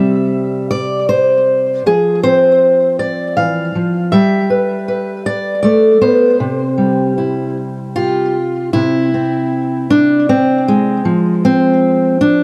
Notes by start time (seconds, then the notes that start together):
Already playing: C3 G3 C4 E5
0.71 D5
1.09 C5
1.86 F3 G#4
2.23 C4 C5
2.99 D5
3.37 E3 F5
3.75 F3
4.12 G3 E5
4.50 B4
4.88 B4
5.26 D5
5.63 A3 D5
6.01 B3 C5
6.40 C3
6.78 G3
7.18 E4
7.96 F4 G4
8.73 C3 E4
9.14 C4
9.90 D4
10.29 C4
10.68 G#3
11.05 F3
11.45 C4
12.21 D4